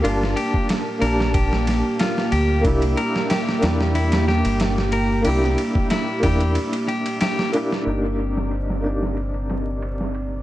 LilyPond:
<<
  \new Staff \with { instrumentName = "Clean electric guitar" } { \time 4/4 \key c \mixolydian \tempo 4 = 92 f'8 g'8 r8 bes'8 g'4 f'8 g'8 | r8 bes'8 g'4 e'8 g'8 r8 bes'8 | g'4 e'8 g'8 r8 g'8 g'8 r8 | \key c \dorian r1 | }
  \new Staff \with { instrumentName = "Analog synth pad" } { \time 4/4 \key c \mixolydian <bes g'>1~ | <bes g'>1~ | <bes g'>1 | \key c \dorian <c' d''>1 | }
  \new Staff \with { instrumentName = "Felt piano" } { \time 4/4 \key c \mixolydian <bes d' g' a''>4. <bes d' g' a''>2~ <bes d' g' a''>8 | <bes d' e' g'>4. <bes d' e' g'>2~ <bes d' e' g'>8 | <bes d' e' g'>4. <bes d' e' g'>2 <bes d' e' g'>8 | \key c \dorian <bes d' ees' g'>4. <bes d' ees' g'>2~ <bes d' ees' g'>8 | }
  \new Staff \with { instrumentName = "Fingered electric bass" } { \clef bass \time 4/4 \key c \mixolydian g,,8 r4 bes,,4~ bes,,16 r8. d,8 | c,8 r4 e,4~ e,16 g,,4~ g,,16 | c,8 r4 e,8 r2 | \key c \dorian g,,1 | }
  \new DrumStaff \with { instrumentName = "Drums" } \drummode { \time 4/4 cymr16 sn16 cymr16 bd16 <cymr sn>8 cymr16 sn16 <bd cymr>16 sn16 <cymr sn>8 <cymr sn>16 sn16 cymr8 | <bd cymr>16 cymr16 cymr16 sn16 <cymr sn>16 sn16 <cymr sn>16 sn16 cymr16 <cymr sn>16 sn16 cymr16 <cymr sn>16 sn16 cymr8 | cymr16 sn16 cymr16 bd16 <cymr sn>8 <bd cymr>16 cymr16 cymr16 cymr16 cymr16 cymr16 <cymr sn>16 sn16 cymr16 sn16 | cymr16 cymr16 cymr16 sn16 cymr16 sn16 cymr16 sn16 cymr16 cymr16 <cymr sn>8 cymr16 sn16 cymr8 | }
>>